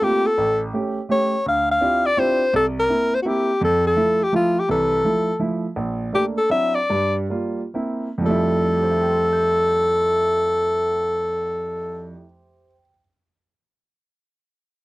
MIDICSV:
0, 0, Header, 1, 3, 480
1, 0, Start_track
1, 0, Key_signature, -1, "major"
1, 0, Tempo, 359928
1, 488, Time_signature, 3, 2, 24, 8
1, 8169, Tempo, 391389
1, 9609, Tempo, 466563
1, 10569, Tempo, 514139
1, 16741, End_track
2, 0, Start_track
2, 0, Title_t, "Alto saxophone"
2, 0, Program_c, 0, 65
2, 49, Note_on_c, 0, 67, 92
2, 354, Note_on_c, 0, 69, 85
2, 374, Note_off_c, 0, 67, 0
2, 814, Note_off_c, 0, 69, 0
2, 1484, Note_on_c, 0, 73, 91
2, 1913, Note_off_c, 0, 73, 0
2, 1978, Note_on_c, 0, 77, 94
2, 2240, Note_off_c, 0, 77, 0
2, 2285, Note_on_c, 0, 77, 94
2, 2746, Note_on_c, 0, 74, 99
2, 2766, Note_off_c, 0, 77, 0
2, 2921, Note_on_c, 0, 72, 90
2, 2941, Note_off_c, 0, 74, 0
2, 3383, Note_off_c, 0, 72, 0
2, 3415, Note_on_c, 0, 69, 93
2, 3542, Note_off_c, 0, 69, 0
2, 3723, Note_on_c, 0, 70, 86
2, 4193, Note_on_c, 0, 72, 86
2, 4213, Note_off_c, 0, 70, 0
2, 4278, Note_off_c, 0, 72, 0
2, 4296, Note_on_c, 0, 66, 55
2, 4366, Note_on_c, 0, 67, 80
2, 4386, Note_off_c, 0, 66, 0
2, 4825, Note_off_c, 0, 67, 0
2, 4855, Note_on_c, 0, 69, 87
2, 5117, Note_off_c, 0, 69, 0
2, 5158, Note_on_c, 0, 69, 83
2, 5646, Note_on_c, 0, 67, 83
2, 5666, Note_off_c, 0, 69, 0
2, 5791, Note_off_c, 0, 67, 0
2, 5806, Note_on_c, 0, 65, 79
2, 6122, Note_on_c, 0, 67, 75
2, 6142, Note_off_c, 0, 65, 0
2, 6269, Note_off_c, 0, 67, 0
2, 6277, Note_on_c, 0, 69, 85
2, 7167, Note_off_c, 0, 69, 0
2, 8194, Note_on_c, 0, 67, 75
2, 8319, Note_off_c, 0, 67, 0
2, 8474, Note_on_c, 0, 69, 88
2, 8621, Note_off_c, 0, 69, 0
2, 8641, Note_on_c, 0, 76, 94
2, 8937, Note_on_c, 0, 74, 83
2, 8955, Note_off_c, 0, 76, 0
2, 9427, Note_off_c, 0, 74, 0
2, 10587, Note_on_c, 0, 69, 84
2, 14166, Note_off_c, 0, 69, 0
2, 16741, End_track
3, 0, Start_track
3, 0, Title_t, "Grand piano"
3, 0, Program_c, 1, 0
3, 17, Note_on_c, 1, 57, 55
3, 17, Note_on_c, 1, 58, 49
3, 22, Note_on_c, 1, 60, 50
3, 22, Note_on_c, 1, 67, 57
3, 23, Note_on_c, 1, 65, 51
3, 337, Note_off_c, 1, 57, 0
3, 337, Note_off_c, 1, 58, 0
3, 339, Note_off_c, 1, 67, 0
3, 340, Note_off_c, 1, 60, 0
3, 340, Note_off_c, 1, 65, 0
3, 504, Note_on_c, 1, 33, 66
3, 911, Note_off_c, 1, 33, 0
3, 977, Note_on_c, 1, 57, 52
3, 990, Note_on_c, 1, 61, 47
3, 994, Note_on_c, 1, 67, 58
3, 1297, Note_off_c, 1, 57, 0
3, 1303, Note_off_c, 1, 61, 0
3, 1305, Note_off_c, 1, 67, 0
3, 1453, Note_on_c, 1, 57, 53
3, 1456, Note_on_c, 1, 61, 49
3, 1464, Note_on_c, 1, 67, 57
3, 1775, Note_off_c, 1, 57, 0
3, 1776, Note_off_c, 1, 61, 0
3, 1780, Note_off_c, 1, 67, 0
3, 1945, Note_on_c, 1, 38, 68
3, 2350, Note_off_c, 1, 38, 0
3, 2411, Note_on_c, 1, 60, 53
3, 2414, Note_on_c, 1, 64, 48
3, 2416, Note_on_c, 1, 62, 47
3, 2422, Note_on_c, 1, 65, 47
3, 2423, Note_on_c, 1, 67, 57
3, 2733, Note_off_c, 1, 60, 0
3, 2734, Note_off_c, 1, 64, 0
3, 2736, Note_off_c, 1, 62, 0
3, 2738, Note_off_c, 1, 65, 0
3, 2739, Note_off_c, 1, 67, 0
3, 2898, Note_on_c, 1, 60, 55
3, 2898, Note_on_c, 1, 64, 51
3, 2899, Note_on_c, 1, 65, 50
3, 2900, Note_on_c, 1, 62, 47
3, 2905, Note_on_c, 1, 67, 57
3, 3216, Note_off_c, 1, 60, 0
3, 3216, Note_off_c, 1, 64, 0
3, 3217, Note_off_c, 1, 62, 0
3, 3217, Note_off_c, 1, 65, 0
3, 3220, Note_off_c, 1, 67, 0
3, 3378, Note_on_c, 1, 36, 75
3, 3786, Note_off_c, 1, 36, 0
3, 3849, Note_on_c, 1, 58, 50
3, 3859, Note_on_c, 1, 60, 47
3, 3861, Note_on_c, 1, 64, 60
3, 4172, Note_off_c, 1, 58, 0
3, 4177, Note_off_c, 1, 60, 0
3, 4178, Note_off_c, 1, 64, 0
3, 4336, Note_on_c, 1, 58, 59
3, 4340, Note_on_c, 1, 60, 52
3, 4340, Note_on_c, 1, 64, 61
3, 4655, Note_off_c, 1, 58, 0
3, 4657, Note_off_c, 1, 60, 0
3, 4657, Note_off_c, 1, 64, 0
3, 4816, Note_on_c, 1, 41, 74
3, 5225, Note_off_c, 1, 41, 0
3, 5283, Note_on_c, 1, 53, 49
3, 5291, Note_on_c, 1, 57, 51
3, 5291, Note_on_c, 1, 64, 57
3, 5608, Note_off_c, 1, 53, 0
3, 5612, Note_off_c, 1, 57, 0
3, 5612, Note_off_c, 1, 64, 0
3, 5768, Note_on_c, 1, 53, 59
3, 5771, Note_on_c, 1, 57, 48
3, 5777, Note_on_c, 1, 64, 61
3, 6090, Note_off_c, 1, 53, 0
3, 6092, Note_off_c, 1, 57, 0
3, 6095, Note_off_c, 1, 64, 0
3, 6250, Note_on_c, 1, 52, 69
3, 6253, Note_on_c, 1, 36, 70
3, 6661, Note_off_c, 1, 52, 0
3, 6663, Note_off_c, 1, 36, 0
3, 6730, Note_on_c, 1, 53, 50
3, 6733, Note_on_c, 1, 57, 43
3, 6737, Note_on_c, 1, 64, 54
3, 7051, Note_off_c, 1, 53, 0
3, 7052, Note_off_c, 1, 57, 0
3, 7054, Note_off_c, 1, 64, 0
3, 7194, Note_on_c, 1, 53, 53
3, 7200, Note_on_c, 1, 64, 57
3, 7203, Note_on_c, 1, 57, 47
3, 7523, Note_off_c, 1, 53, 0
3, 7526, Note_off_c, 1, 64, 0
3, 7528, Note_off_c, 1, 57, 0
3, 7685, Note_on_c, 1, 34, 69
3, 8101, Note_off_c, 1, 34, 0
3, 8172, Note_on_c, 1, 57, 49
3, 8172, Note_on_c, 1, 58, 46
3, 8184, Note_on_c, 1, 62, 55
3, 8476, Note_off_c, 1, 57, 0
3, 8476, Note_off_c, 1, 58, 0
3, 8482, Note_off_c, 1, 62, 0
3, 8623, Note_on_c, 1, 54, 55
3, 8630, Note_on_c, 1, 62, 49
3, 8632, Note_on_c, 1, 60, 51
3, 8636, Note_on_c, 1, 64, 59
3, 8943, Note_off_c, 1, 54, 0
3, 8947, Note_off_c, 1, 62, 0
3, 8948, Note_off_c, 1, 60, 0
3, 8950, Note_off_c, 1, 64, 0
3, 9115, Note_on_c, 1, 55, 70
3, 9118, Note_on_c, 1, 43, 67
3, 9544, Note_off_c, 1, 55, 0
3, 9546, Note_off_c, 1, 43, 0
3, 9611, Note_on_c, 1, 55, 49
3, 9614, Note_on_c, 1, 58, 43
3, 9620, Note_on_c, 1, 65, 58
3, 9914, Note_off_c, 1, 55, 0
3, 9916, Note_off_c, 1, 58, 0
3, 9919, Note_off_c, 1, 65, 0
3, 10061, Note_on_c, 1, 58, 52
3, 10067, Note_on_c, 1, 60, 51
3, 10070, Note_on_c, 1, 64, 58
3, 10397, Note_off_c, 1, 58, 0
3, 10400, Note_off_c, 1, 60, 0
3, 10401, Note_off_c, 1, 64, 0
3, 10514, Note_on_c, 1, 41, 63
3, 10546, Note_on_c, 1, 53, 60
3, 10574, Note_on_c, 1, 55, 60
3, 10603, Note_on_c, 1, 57, 60
3, 10629, Note_on_c, 1, 64, 68
3, 11055, Note_on_c, 1, 67, 41
3, 11124, Note_on_c, 1, 72, 41
3, 11202, Note_on_c, 1, 76, 39
3, 11290, Note_on_c, 1, 79, 38
3, 11379, Note_on_c, 1, 84, 32
3, 11481, Note_on_c, 1, 88, 35
3, 11591, Note_on_c, 1, 91, 31
3, 14196, Note_off_c, 1, 41, 0
3, 14226, Note_off_c, 1, 53, 0
3, 14251, Note_off_c, 1, 55, 0
3, 14280, Note_off_c, 1, 57, 0
3, 14306, Note_off_c, 1, 64, 0
3, 14695, Note_off_c, 1, 67, 0
3, 14764, Note_off_c, 1, 72, 0
3, 14842, Note_off_c, 1, 76, 0
3, 14929, Note_off_c, 1, 79, 0
3, 14976, Note_off_c, 1, 84, 0
3, 15027, Note_off_c, 1, 88, 0
3, 15082, Note_off_c, 1, 91, 0
3, 16741, End_track
0, 0, End_of_file